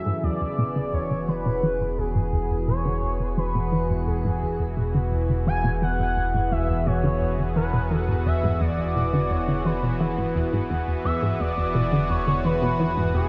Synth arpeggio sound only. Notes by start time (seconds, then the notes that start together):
0.06 G#2
0.24 E2
0.41 E2
0.58 B2
0.76 D3
0.93 E2
1.11 D3
1.28 E3
1.46 B2
1.63 E3
1.80 G#2
1.98 E2
2.15 G#2
2.33 E2
2.50 E2
2.68 B2
2.85 D3
3.03 E2
3.20 D3
3.38 E3
3.55 B2
3.72 E3
3.90 G#2
4.07 E2
4.25 G#2
4.42 E2
4.60 E2
4.77 B2
4.95 D3
5.12 E2
5.29 D3
5.47 E3
5.64 B2
5.82 E3
5.99 G#2
6.17 E2
6.34 G#2
6.52 E2
6.69 E2
6.87 B2
7.04 D3
7.21 E2
7.39 D3
7.56 E3
7.74 B2
7.91 E3
8.09 G#2
8.26 E2
8.43 G#2
8.61 E2
8.78 E2
8.96 B2
9.13 D3
9.31 E2
9.48 D3
9.65 E3
9.83 B2
10.00 E3
10.18 G#2
10.35 E2
10.53 G#2
10.70 E2
10.88 E2
11.05 E2
11.22 G#2
11.40 E2
11.58 E2
11.75 B2
11.92 D3
12.10 E2
12.27 D3
12.45 E3
12.62 B2
12.79 E3
12.97 G#2
13.14 E2